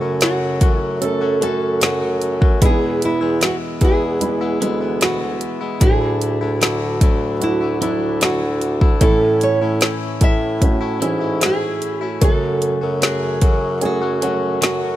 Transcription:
Already playing: grand piano C#3 A3 C#4 F#4
0.01 bassoon F#2, clean electric guitar F#3 A3 C#4 F#4
0.21 clean electric guitar F#2 C#3 F#3 A3 C#4 F#4, nylon-string guitar F#4, snare, closed hi-hat
0.61 bassoon F#2, clean electric guitar F#3 A3 C#4 F#4, kick, closed hi-hat
0.78 nylon-string guitar E4
1.01 grand piano A3 C#4 A4, nylon-string guitar A4, closed hi-hat
1.21 clean electric guitar F#3 A3 C#4 F#4
1.41 bassoon F#2, clean electric guitar F#3 A3 C#4 F#4, grand piano A3 C#4 F#4, nylon-string guitar A4, closed hi-hat
1.81 clean electric guitar F#2 C#3 F#3 A3 C#4 F#4, nylon-string guitar F#4, snare, closed hi-hat
2.01 clean electric guitar F#3 A3 C#4 F#4
2.22 closed hi-hat
2.41 clean electric guitar F#3 A3 C#4 F#4, kick
2.61 clean electric guitar E2 B2 E3 G#3 B3 E4, bassoon E2, grand piano B2 G#3 B3 D4, nylon-string guitar G#4, kick, closed hi-hat
2.69 grand piano E4
2.81 clean electric guitar E3 G#3 B3 E4
3.02 nylon-string guitar E4, closed hi-hat
3.21 bassoon E2, clean electric guitar E3 G#3 B3 E4
3.41 clean electric guitar E2 B2 E3 G#3 B3 E4, nylon-string guitar F#4, snare, closed hi-hat
3.81 bassoon E2, clean electric guitar E3 G#3 B3 E4, nylon-string guitar G#4, kick, closed hi-hat
4.21 grand piano G#3 B3 E4, closed hi-hat
4.41 clean electric guitar E3 G#3 B3 E4
4.61 bassoon D2, clean electric guitar E3 G#3 B3 E4, grand piano G#3 B3 E4, closed hi-hat
4.81 clean electric guitar E3 G#3 B3 E4
5.01 clean electric guitar E2 B2 E3 G#3 B3 E4, nylon-string guitar F#4, snare, closed hi-hat
5.21 clean electric guitar E3 G#3 B3 E4
5.41 closed hi-hat
5.61 clean electric guitar E3 G#3 B3 E4
5.80 bassoon D2, grand piano A2 F#3 D4 E4, clean electric guitar D3 F#3 A3 D4 E4, nylon-string guitar G#4, kick, closed hi-hat
6.01 clean electric guitar A3 D4 E4
6.21 closed hi-hat
6.41 bassoon D2, clean electric guitar A3 D4 E4
6.61 clean electric guitar D3 F#3 A3 D4 E4, nylon-string guitar F#4, snare, closed hi-hat
7.01 bassoon D2, clean electric guitar F#3 A3 D4 E4, kick, closed hi-hat
7.40 grand piano F#3 D4 F#4, nylon-string guitar E4, closed hi-hat
7.61 clean electric guitar A3 D4 E4
7.81 bassoon D2, clean electric guitar F#3 A3 D4 E4, grand piano F#3 D4 E4, closed hi-hat
8.21 clean electric guitar D3 F#3 A3 D4 E4, nylon-string guitar F#4, snare, closed hi-hat
8.42 clean electric guitar A3 D4 E4
8.61 closed hi-hat
8.81 clean electric guitar A3 D4 E4, kick
9.00 bassoon A2, clean electric guitar A2 E3 A3 C#4 E4, grand piano A2 E3 A3 C#4 E4, nylon-string guitar A4, kick, closed hi-hat
9.21 clean electric guitar A3 C#4 E4
9.41 nylon-string guitar C#5, closed hi-hat
9.61 bassoon A2, clean electric guitar A3 C#4 E4
9.81 clean electric guitar A2 E3 A3 C#4 E4, snare, closed hi-hat
10.21 bassoon A2, clean electric guitar E3 A3 C#4 E4, nylon-string guitar E5, kick, closed hi-hat
10.62 grand piano A3 C#4 F#4, kick, closed hi-hat
10.81 clean electric guitar A3 C#4 E4
11.00 bassoon G#2, clean electric guitar E3 A3 C#4 E4, grand piano E3 C#4 E4, closed hi-hat
11.20 clean electric guitar A3 C#4 E4
11.41 clean electric guitar A2 E3 A3 C#4 E4, snare, closed hi-hat
11.46 nylon-string guitar G#4
11.61 clean electric guitar A3 C#4 E4
11.82 closed hi-hat
12.01 clean electric guitar A3 C#4 E4, nylon-string guitar F#4
12.21 clean electric guitar F#2 C#3 F#3 A3 C#4 F#4, bassoon F#2, grand piano C#3 A3 C#4 F#4, nylon-string guitar A4, kick, closed hi-hat
12.62 closed hi-hat
12.81 bassoon F#2, clean electric guitar F#3 A3 C#4 F#4
13.02 clean electric guitar F#2 C#3 F#3 A3 C#4 F#4, nylon-string guitar G#4, snare, closed hi-hat
13.41 bassoon F#2, clean electric guitar F#3 A3 C#4 F#4, kick, closed hi-hat
13.81 grand piano A3 C#4 G#4, closed hi-hat
13.85 nylon-string guitar F#4
14.02 clean electric guitar F#3 A3 C#4 F#4
14.21 bassoon F#2, clean electric guitar F#3 A3 C#4 F#4, grand piano A3 C#4 F#4, closed hi-hat
14.61 clean electric guitar F#2 C#3 F#3 A3 C#4 F#4, nylon-string guitar F#4, snare, closed hi-hat
14.81 clean electric guitar F#3 A3 C#4 F#4

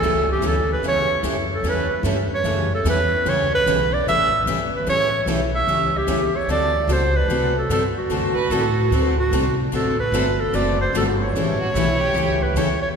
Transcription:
Already playing: clarinet A4
0.02 upright bass C#2, steel-string acoustic guitar C#3 E3 G3 A3 C#4 E4 G4 A4
0.32 clarinet G4
0.41 upright bass D2, steel-string acoustic guitar C#3 E3 G3 A3 C#4 E4 G4 A4
0.47 clarinet A4
0.72 clarinet B4
0.82 upright bass E2, steel-string acoustic guitar C#3 E3 G3 A3 C#4 E4 G4 A4
0.88 clarinet C#5
1.23 upright bass F#2, steel-string acoustic guitar C#3 E3 G3 A3 C#4 E4 G4 A4
1.54 clarinet A4
1.63 upright bass E2, steel-string acoustic guitar C#3 E3 G3 A3 C#4 E4 G4 A4
1.68 clarinet B4
2.03 upright bass G2, steel-string acoustic guitar C#3 E3 G3 A3 C#4 E4 G4 A4
2.34 clarinet C#5
2.44 upright bass F#2, steel-string acoustic guitar C#3 E3 G3 A3 C#4 E4 G4 A4
2.75 clarinet A4
2.84 upright bass E2, steel-string acoustic guitar C#3 E3 G3 A3 C#4 E4 G4 A4
2.89 clarinet B4
3.25 upright bass C#2, steel-string acoustic guitar C#3 E3 G3 A3 C#4 E4 G4 A4, clarinet C#5
3.55 clarinet B4
3.66 upright bass B1, steel-string acoustic guitar C#3 E3 G3 A3 C#4 E4 G4 A4
3.93 clarinet D5
4.07 upright bass A1, steel-string acoustic guitar C#3 E3 G3 A3 C#4 E4 G4 A4, clarinet E5
4.46 upright bass G1, steel-string acoustic guitar C#3 E3 G3 A3 C#4 E4 G4 A4
4.75 clarinet B4
4.87 upright bass A1, steel-string acoustic guitar C#3 E3 G3 A3 C#4 E4 G4 A4, clarinet C#5
5.26 upright bass B1, steel-string acoustic guitar C#3 E3 G3 A3 C#4 E4 G4 A4
5.55 clarinet E5
5.67 upright bass C#2, steel-string acoustic guitar C#3 E3 G3 A3 C#4 E4 G4 A4
5.97 clarinet G4
6.07 upright bass E2, steel-string acoustic guitar C#3 E3 G3 A3 C#4 E4 G4 A4
6.36 clarinet C#5
6.47 upright bass D2, steel-string acoustic guitar D3 A3 C4 F#4 A4, clarinet D5
6.88 upright bass C#2, steel-string acoustic guitar D3 A3 C4 F#4 A4
6.92 clarinet C5
7.17 clarinet B4
7.28 upright bass C2, steel-string acoustic guitar D3 A3 C4 F#4 A4
7.58 clarinet A4
7.69 upright bass G2, steel-string acoustic guitar D3 A3 C4 F#4 A4, clarinet A4
7.98 clarinet F#4
8.09 upright bass F#2, steel-string acoustic guitar D3 A3 C4 F#4 A4
8.35 violin B4, muted upright bass stroke
8.50 upright bass A2, steel-string acoustic guitar D3 A3 C4 F#4 A4, violin A4
8.90 upright bass D2, steel-string acoustic guitar D3 A3 C4 F#4 A4
9.19 clarinet F#4
9.31 upright bass C2, steel-string acoustic guitar D3 A3 C4 F#4 A4
9.72 upright bass A1, steel-string acoustic guitar D3 A3 C4 F#4 A4, clarinet A4
10.00 clarinet B4
10.12 upright bass G1, steel-string acoustic guitar D3 A3 C4 F#4 A4
10.40 clarinet A4
10.53 upright bass F#1, steel-string acoustic guitar D3 A3 C4 F#4 A4, clarinet D5
10.81 clarinet C5
10.93 upright bass G1, steel-string acoustic guitar D3 A3 C4 F#4 A4
10.97 clarinet A4
11.23 clarinet C#5
11.33 upright bass A1, steel-string acoustic guitar C#3 E3 G3 C#4 E4 A4
11.37 steel-string acoustic guitar A3 G4
11.60 violin F#4
11.74 upright bass B1, steel-string acoustic guitar C#3 E3 G3 A3 C#4 E4 G4 A4, violin E4
12.01 violin G4
12.14 upright bass C#2, steel-string acoustic guitar C#3 E3 G3 A3 C#4 E4 G4 A4
12.42 clarinet B4
12.54 upright bass E2, steel-string acoustic guitar C#3 E3 G3 A3 C#4 E4 G4 A4, clarinet C#5
12.82 clarinet C#5

